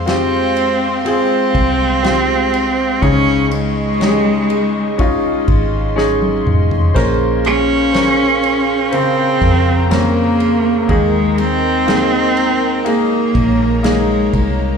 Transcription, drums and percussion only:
0.07 snare, ride
0.57 ride
1.06 ride
1.55 kick, ride
2.04 snare, ride
2.54 ride
3.02 kick, ride
3.51 ride
4.01 snare, ride
4.50 ride
4.99 kick, ride
5.48 kick, ride
5.98 snare
6.22 high tom
6.47 mid tom
6.71 floor tom
6.96 kick, splash
7.45 ride
7.94 snare, ride
8.43 ride
8.92 ride
9.42 kick, ride
9.91 snare, ride
10.40 ride
10.89 kick, ride
11.38 ride
11.88 snare, ride
12.37 ride
12.86 ride
13.35 kick, ride
13.84 snare, ride
14.33 kick, ride

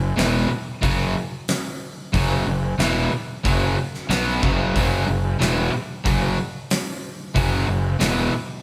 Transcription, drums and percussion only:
0.18 snare, open hi-hat
0.83 kick, open hi-hat
1.48 snare, open hi-hat
2.14 kick, open hi-hat
2.79 snare, open hi-hat
3.45 kick, open hi-hat
3.94 snare
4.10 snare, open hi-hat
4.43 kick
4.76 kick, open hi-hat
5.41 snare, open hi-hat
6.06 kick, open hi-hat
6.70 snare, open hi-hat
7.36 kick, open hi-hat
8.00 snare, open hi-hat

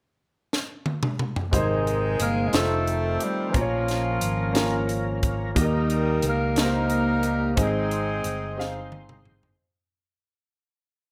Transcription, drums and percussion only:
0.53 snare
0.86 high tom
1.03 mid tom
1.19 mid tom
1.36 floor tom
1.53 kick, closed hi-hat
1.87 closed hi-hat
2.20 closed hi-hat
2.53 snare, closed hi-hat
2.87 closed hi-hat
3.20 closed hi-hat
3.54 kick, closed hi-hat
3.88 snare, closed hi-hat
4.21 closed hi-hat
4.55 snare, closed hi-hat
4.89 closed hi-hat
5.23 kick, closed hi-hat
5.56 kick, closed hi-hat
5.90 closed hi-hat
6.22 closed hi-hat
6.56 snare, closed hi-hat
6.90 closed hi-hat
7.23 closed hi-hat
7.57 kick, closed hi-hat
7.91 closed hi-hat
8.24 closed hi-hat
8.60 snare
8.92 high tom
9.09 mid tom
9.25 mid tom
9.43 floor tom

